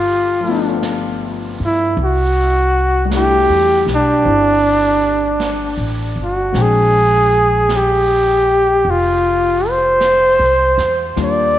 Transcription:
Already playing: upright bass G1, muted trumpet F4
0.41 grand piano F3 A3
0.48 grand piano B3 D4
0.83 brush sweep, snare, hi-hat pedal
1.60 upright bass G2
1.65 muted trumpet E4
1.97 upright bass C2, brush sweep
2.04 muted trumpet F#4
3.05 grand piano G3 A3
3.11 grand piano D4, brush sweep, snare, hi-hat pedal
3.16 grand piano E4, muted trumpet G4
3.49 upright bass E2
3.86 upright bass B1, snare
3.94 muted trumpet D4
4.24 upright bass G1, grand piano C4 E4, brush sweep
5.40 brush sweep, snare, hi-hat pedal
5.77 upright bass A1
6.16 upright bass G1
6.23 muted trumpet F#4
6.52 upright bass A#1, grand piano G#3 C4 D4, brush sweep, snare
6.57 grand piano G5
6.62 muted trumpet G#4
7.69 brush sweep, snare, hi-hat pedal
7.76 muted trumpet G4
8.85 upright bass F1, brush sweep
8.90 muted trumpet F4
9.69 muted trumpet C5
10.01 brush sweep, snare, hi-hat pedal
10.39 upright bass C2
10.78 upright bass E2, snare
11.16 upright bass D#2, grand piano G3 A#3 D4 F4, brush sweep, snare
11.23 muted trumpet D5

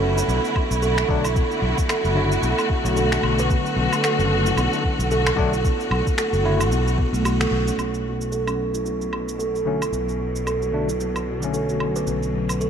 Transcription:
Already playing: fretless electric bass F#1, string section D3 A3 C#4 E4 F#4, kalimba C#4
0.18 kalimba E4, cabasa
0.28 fretless electric bass B1, kalimba B3, cabasa
0.45 cabasa
0.56 kalimba F#3, kick, low woodblock
0.71 fretless electric bass B1, cabasa
0.82 kalimba A4, cabasa
0.98 kalimba A4, finger snap, cabasa
1.08 fretless electric bass B1, tine electric piano D3 F#3 A3 D4, kick
1.25 kalimba E4, cabasa, low woodblock
1.36 kalimba B3, kick, cabasa
1.51 cabasa
1.62 fretless electric bass B1, kalimba F#3
1.78 kick, cabasa
1.89 kalimba A4, finger snap, cabasa, low woodblock
2.05 fretless electric bass F#1, kalimba F#4, cabasa
2.15 tine electric piano D3 F#3 A3 E4
2.32 kalimba E4, cabasa
2.43 fretless electric bass B1, kalimba B3, cabasa
2.58 cabasa, low woodblock
2.70 kalimba F#4, kick
2.83 fretless electric bass B1, tine electric piano D3 F#3 A3, cabasa
2.97 kalimba A4, cabasa
3.12 kalimba F#4, finger snap, cabasa
3.23 fretless electric bass B1, low woodblock
3.39 kalimba B4, cabasa
3.50 kalimba B3, kick, cabasa
3.66 cabasa
3.77 fretless electric bass B1, kalimba F#3
3.93 cabasa, low woodblock
4.04 kalimba A4, finger snap, cabasa
4.19 fretless electric bass F#1, kalimba C#4, cabasa
4.46 kalimba E4, cabasa
4.57 fretless electric bass B1, kalimba B3, cabasa, low woodblock
4.73 cabasa
4.84 kalimba F#3, kick
4.99 fretless electric bass B1, cabasa
5.11 kalimba A4, cabasa
5.27 kalimba A4, finger snap, cabasa, low woodblock
5.36 fretless electric bass B1, tine electric piano D3 F#3 A3 D4, kick
5.53 kalimba E4, cabasa
5.65 kalimba B3, kick, cabasa
5.80 cabasa
5.91 fretless electric bass B1, kalimba F#3, low woodblock
6.07 kick, cabasa
6.18 kalimba A4, finger snap, cabasa
6.33 fretless electric bass F#1, kalimba F#4, cabasa
6.44 tine electric piano D3 F#3 A3 E4
6.60 kalimba E4, cabasa, low woodblock
6.71 fretless electric bass B1, kalimba B3, cabasa
6.88 cabasa
6.98 kalimba B3, kick
7.13 fretless electric bass B1, kalimba A3, cabasa
7.25 kalimba F#4, cabasa, low woodblock
7.40 kalimba A4, finger snap, cabasa
7.51 fretless electric bass B1
7.67 kalimba C#4, cabasa
7.78 fretless electric bass B1, string section B2, kalimba B3, cabasa, low woodblock
7.94 cabasa
8.05 kalimba F#3
8.21 string section F#3, cabasa
8.32 kalimba A4, cabasa
8.47 kalimba C#4, cabasa, low woodblock
8.74 kalimba E4, cabasa
8.85 kalimba B3, cabasa
9.01 cabasa
9.12 kalimba F#3, low woodblock
9.28 cabasa
9.39 kalimba A4, cabasa
9.55 kalimba A4, cabasa
9.65 tine electric piano D3 F#3 A3 C#4
9.82 kalimba E4, cabasa, low woodblock
9.93 fretless electric bass B1, kalimba B3, cabasa
10.09 cabasa
10.20 kalimba F#3
10.36 cabasa
10.47 kalimba A4, cabasa, low woodblock
10.62 kalimba F#4, cabasa
10.72 tine electric piano D3 F#3 A3 D4
10.89 kalimba E4, cabasa
11.00 kalimba B3, cabasa
11.16 cabasa, low woodblock
11.27 kalimba F#4
11.40 tine electric piano D3 F#3 A3, cabasa
11.45 tine electric piano C#4
11.54 kalimba A4, cabasa
11.69 kalimba F#4, cabasa
11.80 low woodblock
11.96 kalimba B4, cabasa
12.07 fretless electric bass B1, kalimba B3, cabasa
12.23 cabasa
12.34 kalimba F#3
12.49 cabasa, low woodblock
12.61 kalimba A4, cabasa

